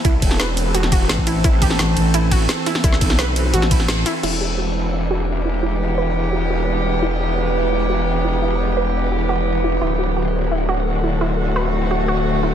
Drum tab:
CC |----------------|----------------|----------------|x---------------|
RD |--x---x---x---x-|--x---x---x---x-|--x---x---x---x-|----------------|
HH |x-x-x-x-x-x-x-x-|x-x-x-x-x-x-x-x-|x-x-x-x-x-x-x-x-|----------------|
SD |---oo----o--o---|---oo-------o-oo|-o-oo----o-oo---|----------------|
BD |o-o-------o--o--|o-o-------o-----|o-o-------o-----|----------------|

CC |----------------|----------------|----------------|----------------|
RD |----------------|----------------|----------------|----------------|
HH |----------------|----------------|----------------|----------------|
SD |----------------|----------------|----------------|----------------|
BD |----------------|----------------|----------------|----------------|

CC |----------------|
RD |----------------|
HH |----------------|
SD |----------------|
BD |----------------|